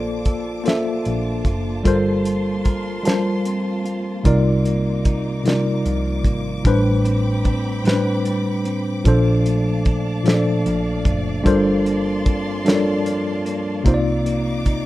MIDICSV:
0, 0, Header, 1, 6, 480
1, 0, Start_track
1, 0, Tempo, 800000
1, 1112, Time_signature, 6, 3, 24, 8
1, 8915, End_track
2, 0, Start_track
2, 0, Title_t, "String section"
2, 0, Program_c, 0, 48
2, 0, Note_on_c, 0, 58, 74
2, 0, Note_on_c, 0, 65, 68
2, 0, Note_on_c, 0, 81, 65
2, 0, Note_on_c, 0, 86, 84
2, 1086, Note_off_c, 0, 86, 0
2, 1114, Note_on_c, 0, 84, 94
2, 2529, Note_off_c, 0, 81, 0
2, 2539, Note_off_c, 0, 84, 0
2, 2547, Note_on_c, 0, 63, 67
2, 2548, Note_on_c, 0, 86, 87
2, 3969, Note_off_c, 0, 58, 0
2, 3969, Note_off_c, 0, 65, 0
2, 3976, Note_off_c, 0, 63, 0
2, 3986, Note_on_c, 0, 79, 72
2, 3986, Note_on_c, 0, 83, 71
2, 3988, Note_on_c, 0, 60, 79
2, 5415, Note_off_c, 0, 79, 0
2, 5415, Note_off_c, 0, 83, 0
2, 5416, Note_off_c, 0, 60, 0
2, 5429, Note_on_c, 0, 74, 82
2, 5431, Note_on_c, 0, 77, 73
2, 5432, Note_on_c, 0, 81, 72
2, 6846, Note_off_c, 0, 86, 0
2, 6858, Note_off_c, 0, 81, 0
2, 6869, Note_on_c, 0, 81, 79
2, 6869, Note_on_c, 0, 84, 93
2, 8296, Note_off_c, 0, 81, 0
2, 8296, Note_off_c, 0, 84, 0
2, 8316, Note_on_c, 0, 63, 79
2, 8317, Note_on_c, 0, 86, 95
2, 8915, Note_off_c, 0, 63, 0
2, 8915, Note_off_c, 0, 74, 0
2, 8915, Note_off_c, 0, 77, 0
2, 8915, Note_off_c, 0, 86, 0
2, 8915, End_track
3, 0, Start_track
3, 0, Title_t, "Tine electric piano"
3, 0, Program_c, 1, 4
3, 0, Control_c, 1, 64, 127
3, 0, Note_on_c, 1, 58, 98
3, 0, Note_on_c, 1, 65, 91
3, 0, Note_on_c, 1, 69, 82
3, 0, Note_on_c, 1, 72, 80
3, 0, Note_on_c, 1, 74, 94
3, 131, Note_off_c, 1, 58, 0
3, 134, Note_off_c, 1, 65, 0
3, 136, Note_off_c, 1, 69, 0
3, 139, Note_off_c, 1, 72, 0
3, 162, Note_off_c, 1, 74, 0
3, 384, Note_on_c, 1, 58, 74
3, 390, Note_on_c, 1, 65, 71
3, 394, Note_on_c, 1, 69, 69
3, 400, Note_on_c, 1, 72, 64
3, 407, Note_on_c, 1, 76, 83
3, 849, Note_off_c, 1, 58, 0
3, 852, Note_off_c, 1, 65, 0
3, 855, Note_off_c, 1, 69, 0
3, 857, Note_off_c, 1, 72, 0
3, 861, Note_off_c, 1, 76, 0
3, 1101, Note_on_c, 1, 55, 91
3, 1109, Note_on_c, 1, 65, 75
3, 1114, Note_on_c, 1, 69, 73
3, 1120, Note_on_c, 1, 70, 79
3, 1121, Control_c, 1, 64, 0
3, 1125, Note_on_c, 1, 72, 103
3, 1220, Control_c, 1, 64, 127
3, 1568, Note_off_c, 1, 55, 0
3, 1572, Note_off_c, 1, 65, 0
3, 1575, Note_off_c, 1, 69, 0
3, 1578, Note_off_c, 1, 70, 0
3, 1580, Note_off_c, 1, 72, 0
3, 1819, Note_on_c, 1, 55, 80
3, 1827, Note_on_c, 1, 65, 69
3, 1832, Note_on_c, 1, 81, 63
3, 1837, Note_on_c, 1, 70, 70
3, 1843, Note_on_c, 1, 72, 82
3, 2287, Note_off_c, 1, 55, 0
3, 2291, Note_off_c, 1, 65, 0
3, 2293, Note_off_c, 1, 81, 0
3, 2296, Note_off_c, 1, 70, 0
3, 2299, Note_off_c, 1, 72, 0
3, 2541, Note_on_c, 1, 48, 80
3, 2547, Note_on_c, 1, 55, 81
3, 2550, Note_on_c, 1, 63, 81
3, 2556, Note_on_c, 1, 65, 83
3, 2560, Control_c, 1, 64, 0
3, 2560, Note_on_c, 1, 70, 78
3, 2565, Note_on_c, 1, 74, 95
3, 2674, Control_c, 1, 64, 127
3, 3008, Note_off_c, 1, 48, 0
3, 3011, Note_off_c, 1, 55, 0
3, 3013, Note_off_c, 1, 63, 0
3, 3016, Note_off_c, 1, 65, 0
3, 3017, Note_off_c, 1, 70, 0
3, 3020, Note_off_c, 1, 74, 0
3, 3263, Note_on_c, 1, 48, 72
3, 3270, Note_on_c, 1, 55, 63
3, 3274, Note_on_c, 1, 63, 62
3, 3278, Note_on_c, 1, 65, 68
3, 3282, Note_on_c, 1, 70, 62
3, 3288, Note_on_c, 1, 74, 73
3, 3729, Note_off_c, 1, 48, 0
3, 3732, Note_off_c, 1, 55, 0
3, 3734, Note_off_c, 1, 63, 0
3, 3736, Note_off_c, 1, 65, 0
3, 3739, Note_off_c, 1, 70, 0
3, 3742, Note_off_c, 1, 74, 0
3, 3985, Note_on_c, 1, 45, 92
3, 3991, Note_on_c, 1, 55, 72
3, 3995, Note_on_c, 1, 62, 85
3, 4001, Control_c, 1, 64, 0
3, 4003, Note_on_c, 1, 71, 85
3, 4009, Note_on_c, 1, 72, 92
3, 4113, Control_c, 1, 64, 127
3, 4450, Note_off_c, 1, 45, 0
3, 4453, Note_off_c, 1, 55, 0
3, 4455, Note_off_c, 1, 62, 0
3, 4459, Note_off_c, 1, 71, 0
3, 4462, Note_off_c, 1, 72, 0
3, 4703, Note_on_c, 1, 45, 69
3, 4707, Note_on_c, 1, 55, 67
3, 4715, Note_on_c, 1, 62, 62
3, 4722, Note_on_c, 1, 71, 75
3, 4727, Note_on_c, 1, 72, 85
3, 5169, Note_off_c, 1, 45, 0
3, 5171, Note_off_c, 1, 55, 0
3, 5175, Note_off_c, 1, 62, 0
3, 5178, Note_off_c, 1, 71, 0
3, 5181, Note_off_c, 1, 72, 0
3, 5426, Note_on_c, 1, 46, 85
3, 5431, Note_on_c, 1, 53, 81
3, 5439, Note_on_c, 1, 62, 82
3, 5441, Control_c, 1, 64, 0
3, 5443, Note_on_c, 1, 69, 82
3, 5450, Note_on_c, 1, 72, 95
3, 5528, Control_c, 1, 64, 127
3, 5890, Note_off_c, 1, 46, 0
3, 5893, Note_off_c, 1, 53, 0
3, 5897, Note_off_c, 1, 62, 0
3, 5899, Note_off_c, 1, 69, 0
3, 5902, Note_off_c, 1, 72, 0
3, 6142, Note_on_c, 1, 46, 75
3, 6148, Note_on_c, 1, 53, 70
3, 6154, Note_on_c, 1, 62, 67
3, 6161, Note_on_c, 1, 69, 72
3, 6164, Note_on_c, 1, 72, 57
3, 6197, Note_off_c, 1, 72, 0
3, 6203, Note_on_c, 1, 74, 80
3, 6609, Note_off_c, 1, 46, 0
3, 6612, Note_off_c, 1, 53, 0
3, 6614, Note_off_c, 1, 62, 0
3, 6618, Note_off_c, 1, 69, 0
3, 6639, Note_off_c, 1, 74, 0
3, 6860, Note_on_c, 1, 55, 101
3, 6862, Note_on_c, 1, 62, 78
3, 6869, Note_on_c, 1, 65, 81
3, 6873, Note_on_c, 1, 69, 76
3, 6877, Note_on_c, 1, 70, 81
3, 6880, Control_c, 1, 64, 0
3, 6883, Note_on_c, 1, 72, 104
3, 6983, Control_c, 1, 64, 127
3, 7328, Note_off_c, 1, 55, 0
3, 7329, Note_off_c, 1, 62, 0
3, 7332, Note_off_c, 1, 65, 0
3, 7334, Note_off_c, 1, 69, 0
3, 7336, Note_off_c, 1, 70, 0
3, 7339, Note_off_c, 1, 72, 0
3, 7587, Note_on_c, 1, 55, 82
3, 7592, Note_on_c, 1, 62, 74
3, 7596, Note_on_c, 1, 65, 73
3, 7599, Note_on_c, 1, 69, 70
3, 7604, Note_on_c, 1, 70, 72
3, 7611, Note_on_c, 1, 73, 64
3, 7641, Note_off_c, 1, 73, 0
3, 7648, Note_on_c, 1, 74, 84
3, 8051, Note_off_c, 1, 55, 0
3, 8053, Note_off_c, 1, 62, 0
3, 8056, Note_off_c, 1, 65, 0
3, 8057, Note_off_c, 1, 69, 0
3, 8059, Note_off_c, 1, 70, 0
3, 8082, Note_off_c, 1, 74, 0
3, 8301, Note_on_c, 1, 48, 88
3, 8307, Note_on_c, 1, 58, 85
3, 8314, Note_on_c, 1, 63, 81
3, 8319, Note_on_c, 1, 65, 81
3, 8320, Control_c, 1, 64, 0
3, 8327, Note_on_c, 1, 72, 84
3, 8359, Note_off_c, 1, 72, 0
3, 8364, Note_on_c, 1, 74, 98
3, 8416, Control_c, 1, 64, 127
3, 8768, Note_off_c, 1, 48, 0
3, 8771, Note_off_c, 1, 58, 0
3, 8775, Note_off_c, 1, 63, 0
3, 8777, Note_off_c, 1, 65, 0
3, 8799, Note_off_c, 1, 74, 0
3, 8915, End_track
4, 0, Start_track
4, 0, Title_t, "Clean electric guitar"
4, 0, Program_c, 2, 27
4, 0, Note_on_c, 2, 58, 81
4, 0, Note_on_c, 2, 62, 55
4, 0, Note_on_c, 2, 65, 73
4, 155, Note_on_c, 2, 69, 65
4, 397, Note_off_c, 2, 65, 0
4, 400, Note_on_c, 2, 65, 67
4, 635, Note_off_c, 2, 62, 0
4, 637, Note_on_c, 2, 62, 61
4, 871, Note_off_c, 2, 65, 0
4, 873, Note_on_c, 2, 65, 60
4, 1105, Note_off_c, 2, 58, 0
4, 1108, Note_on_c, 2, 55, 92
4, 1351, Note_off_c, 2, 65, 0
4, 1353, Note_on_c, 2, 65, 68
4, 1583, Note_off_c, 2, 69, 0
4, 1586, Note_on_c, 2, 70, 71
4, 1829, Note_off_c, 2, 65, 0
4, 1832, Note_on_c, 2, 65, 64
4, 2071, Note_off_c, 2, 62, 0
4, 2073, Note_on_c, 2, 60, 54
4, 2308, Note_off_c, 2, 65, 0
4, 2310, Note_on_c, 2, 65, 61
4, 2552, Note_on_c, 2, 48, 84
4, 2790, Note_off_c, 2, 60, 0
4, 2793, Note_on_c, 2, 58, 65
4, 3027, Note_off_c, 2, 65, 0
4, 3029, Note_on_c, 2, 63, 66
4, 3208, Note_off_c, 2, 55, 0
4, 3262, Note_off_c, 2, 58, 0
4, 3269, Note_on_c, 2, 58, 58
4, 3510, Note_on_c, 2, 53, 53
4, 3686, Note_off_c, 2, 70, 0
4, 3742, Note_off_c, 2, 58, 0
4, 3749, Note_on_c, 2, 58, 63
4, 3988, Note_on_c, 2, 45, 80
4, 3992, Note_off_c, 2, 48, 0
4, 4039, Note_off_c, 2, 53, 0
4, 4039, Note_off_c, 2, 58, 0
4, 4039, Note_off_c, 2, 63, 0
4, 4229, Note_on_c, 2, 60, 69
4, 4467, Note_on_c, 2, 62, 68
4, 4700, Note_off_c, 2, 60, 0
4, 4707, Note_on_c, 2, 60, 60
4, 4947, Note_on_c, 2, 55, 53
4, 5182, Note_off_c, 2, 60, 0
4, 5189, Note_on_c, 2, 60, 65
4, 5430, Note_off_c, 2, 45, 0
4, 5433, Note_on_c, 2, 46, 85
4, 5478, Note_off_c, 2, 55, 0
4, 5479, Note_off_c, 2, 60, 0
4, 5670, Note_on_c, 2, 57, 66
4, 5913, Note_off_c, 2, 62, 0
4, 5916, Note_on_c, 2, 62, 72
4, 6156, Note_off_c, 2, 57, 0
4, 6158, Note_on_c, 2, 57, 59
4, 6394, Note_on_c, 2, 53, 60
4, 6628, Note_off_c, 2, 57, 0
4, 6631, Note_on_c, 2, 57, 61
4, 6873, Note_off_c, 2, 46, 0
4, 6873, Note_on_c, 2, 43, 86
4, 7113, Note_off_c, 2, 57, 0
4, 7116, Note_on_c, 2, 58, 71
4, 7353, Note_off_c, 2, 62, 0
4, 7355, Note_on_c, 2, 60, 66
4, 7593, Note_off_c, 2, 58, 0
4, 7596, Note_on_c, 2, 58, 66
4, 7834, Note_off_c, 2, 53, 0
4, 7836, Note_on_c, 2, 53, 54
4, 8070, Note_off_c, 2, 58, 0
4, 8072, Note_on_c, 2, 58, 72
4, 8313, Note_off_c, 2, 43, 0
4, 8313, Note_on_c, 2, 48, 86
4, 8553, Note_off_c, 2, 58, 0
4, 8555, Note_on_c, 2, 58, 64
4, 8573, Note_off_c, 2, 60, 0
4, 8795, Note_on_c, 2, 63, 69
4, 8813, Note_off_c, 2, 53, 0
4, 8915, Note_off_c, 2, 48, 0
4, 8915, Note_off_c, 2, 58, 0
4, 8915, Note_off_c, 2, 63, 0
4, 8915, End_track
5, 0, Start_track
5, 0, Title_t, "Picked electric bass"
5, 0, Program_c, 3, 34
5, 0, Note_on_c, 3, 34, 110
5, 611, Note_off_c, 3, 34, 0
5, 639, Note_on_c, 3, 34, 83
5, 852, Note_off_c, 3, 34, 0
5, 873, Note_on_c, 3, 30, 83
5, 1089, Note_off_c, 3, 30, 0
5, 1116, Note_on_c, 3, 31, 102
5, 2530, Note_off_c, 3, 31, 0
5, 2555, Note_on_c, 3, 36, 102
5, 3490, Note_off_c, 3, 36, 0
5, 3516, Note_on_c, 3, 36, 102
5, 3749, Note_off_c, 3, 36, 0
5, 3749, Note_on_c, 3, 32, 73
5, 3967, Note_off_c, 3, 32, 0
5, 3994, Note_on_c, 3, 33, 117
5, 5410, Note_off_c, 3, 33, 0
5, 5435, Note_on_c, 3, 34, 104
5, 6370, Note_off_c, 3, 34, 0
5, 6400, Note_on_c, 3, 34, 101
5, 6613, Note_off_c, 3, 34, 0
5, 6634, Note_on_c, 3, 30, 91
5, 6850, Note_off_c, 3, 30, 0
5, 6879, Note_on_c, 3, 31, 122
5, 8292, Note_off_c, 3, 31, 0
5, 8317, Note_on_c, 3, 36, 99
5, 8915, Note_off_c, 3, 36, 0
5, 8915, End_track
6, 0, Start_track
6, 0, Title_t, "Drums"
6, 152, Note_on_c, 9, 42, 52
6, 154, Note_on_c, 9, 36, 94
6, 212, Note_off_c, 9, 42, 0
6, 215, Note_off_c, 9, 36, 0
6, 394, Note_on_c, 9, 42, 80
6, 407, Note_on_c, 9, 38, 117
6, 454, Note_off_c, 9, 42, 0
6, 467, Note_off_c, 9, 38, 0
6, 632, Note_on_c, 9, 42, 51
6, 692, Note_off_c, 9, 42, 0
6, 869, Note_on_c, 9, 36, 91
6, 872, Note_on_c, 9, 42, 47
6, 929, Note_off_c, 9, 36, 0
6, 932, Note_off_c, 9, 42, 0
6, 1113, Note_on_c, 9, 36, 101
6, 1114, Note_on_c, 9, 42, 77
6, 1173, Note_off_c, 9, 36, 0
6, 1174, Note_off_c, 9, 42, 0
6, 1352, Note_on_c, 9, 42, 63
6, 1412, Note_off_c, 9, 42, 0
6, 1590, Note_on_c, 9, 42, 47
6, 1593, Note_on_c, 9, 36, 93
6, 1650, Note_off_c, 9, 42, 0
6, 1653, Note_off_c, 9, 36, 0
6, 1832, Note_on_c, 9, 42, 67
6, 1845, Note_on_c, 9, 38, 121
6, 1892, Note_off_c, 9, 42, 0
6, 1905, Note_off_c, 9, 38, 0
6, 2073, Note_on_c, 9, 42, 57
6, 2133, Note_off_c, 9, 42, 0
6, 2313, Note_on_c, 9, 42, 47
6, 2373, Note_off_c, 9, 42, 0
6, 2552, Note_on_c, 9, 36, 112
6, 2552, Note_on_c, 9, 42, 81
6, 2612, Note_off_c, 9, 36, 0
6, 2612, Note_off_c, 9, 42, 0
6, 2792, Note_on_c, 9, 42, 53
6, 2852, Note_off_c, 9, 42, 0
6, 3031, Note_on_c, 9, 42, 50
6, 3033, Note_on_c, 9, 36, 108
6, 3091, Note_off_c, 9, 42, 0
6, 3093, Note_off_c, 9, 36, 0
6, 3273, Note_on_c, 9, 42, 78
6, 3286, Note_on_c, 9, 38, 120
6, 3333, Note_off_c, 9, 42, 0
6, 3346, Note_off_c, 9, 38, 0
6, 3513, Note_on_c, 9, 42, 53
6, 3573, Note_off_c, 9, 42, 0
6, 3747, Note_on_c, 9, 36, 89
6, 3752, Note_on_c, 9, 42, 47
6, 3807, Note_off_c, 9, 36, 0
6, 3812, Note_off_c, 9, 42, 0
6, 3990, Note_on_c, 9, 36, 107
6, 3992, Note_on_c, 9, 42, 72
6, 4050, Note_off_c, 9, 36, 0
6, 4052, Note_off_c, 9, 42, 0
6, 4232, Note_on_c, 9, 42, 59
6, 4292, Note_off_c, 9, 42, 0
6, 4469, Note_on_c, 9, 42, 51
6, 4472, Note_on_c, 9, 36, 91
6, 4529, Note_off_c, 9, 42, 0
6, 4532, Note_off_c, 9, 36, 0
6, 4712, Note_on_c, 9, 42, 73
6, 4726, Note_on_c, 9, 38, 127
6, 4772, Note_off_c, 9, 42, 0
6, 4786, Note_off_c, 9, 38, 0
6, 4952, Note_on_c, 9, 42, 56
6, 5012, Note_off_c, 9, 42, 0
6, 5192, Note_on_c, 9, 42, 51
6, 5252, Note_off_c, 9, 42, 0
6, 5432, Note_on_c, 9, 36, 108
6, 5433, Note_on_c, 9, 42, 65
6, 5492, Note_off_c, 9, 36, 0
6, 5493, Note_off_c, 9, 42, 0
6, 5675, Note_on_c, 9, 42, 58
6, 5735, Note_off_c, 9, 42, 0
6, 5912, Note_on_c, 9, 42, 48
6, 5915, Note_on_c, 9, 36, 107
6, 5972, Note_off_c, 9, 42, 0
6, 5975, Note_off_c, 9, 36, 0
6, 6154, Note_on_c, 9, 42, 78
6, 6167, Note_on_c, 9, 38, 110
6, 6214, Note_off_c, 9, 42, 0
6, 6227, Note_off_c, 9, 38, 0
6, 6396, Note_on_c, 9, 42, 55
6, 6456, Note_off_c, 9, 42, 0
6, 6632, Note_on_c, 9, 36, 104
6, 6637, Note_on_c, 9, 42, 46
6, 6692, Note_off_c, 9, 36, 0
6, 6697, Note_off_c, 9, 42, 0
6, 6875, Note_on_c, 9, 36, 106
6, 6878, Note_on_c, 9, 42, 77
6, 6935, Note_off_c, 9, 36, 0
6, 6938, Note_off_c, 9, 42, 0
6, 7118, Note_on_c, 9, 42, 56
6, 7178, Note_off_c, 9, 42, 0
6, 7355, Note_on_c, 9, 42, 52
6, 7357, Note_on_c, 9, 36, 105
6, 7415, Note_off_c, 9, 42, 0
6, 7417, Note_off_c, 9, 36, 0
6, 7596, Note_on_c, 9, 42, 72
6, 7609, Note_on_c, 9, 38, 118
6, 7656, Note_off_c, 9, 42, 0
6, 7669, Note_off_c, 9, 38, 0
6, 7836, Note_on_c, 9, 42, 61
6, 7896, Note_off_c, 9, 42, 0
6, 8077, Note_on_c, 9, 42, 50
6, 8137, Note_off_c, 9, 42, 0
6, 8314, Note_on_c, 9, 36, 105
6, 8315, Note_on_c, 9, 42, 78
6, 8374, Note_off_c, 9, 36, 0
6, 8375, Note_off_c, 9, 42, 0
6, 8557, Note_on_c, 9, 42, 58
6, 8617, Note_off_c, 9, 42, 0
6, 8794, Note_on_c, 9, 42, 51
6, 8796, Note_on_c, 9, 36, 91
6, 8854, Note_off_c, 9, 42, 0
6, 8856, Note_off_c, 9, 36, 0
6, 8915, End_track
0, 0, End_of_file